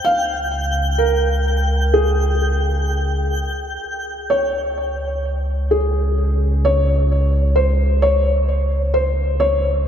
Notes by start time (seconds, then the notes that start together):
Already playing: G5 G6
0.05 C#2 F5
0.98 A#4
1.94 G#4
3.85 C#2
4.30 C#5
5.71 G#4
6.65 C#5
7.56 C5
8.02 C#5
8.94 C5
9.40 C#5